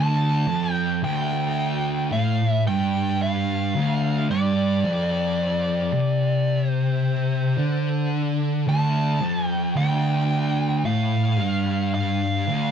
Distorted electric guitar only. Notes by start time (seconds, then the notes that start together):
Already playing: D2
0.48 F2
1.03 D2
2.12 A2
2.66 G2
3.75 D2
4.30 G2
4.85 F2
5.93 C3
7.57 D3
8.67 D2
9.21 F2
9.76 D2
10.85 A2
11.39 G2
12.48 D2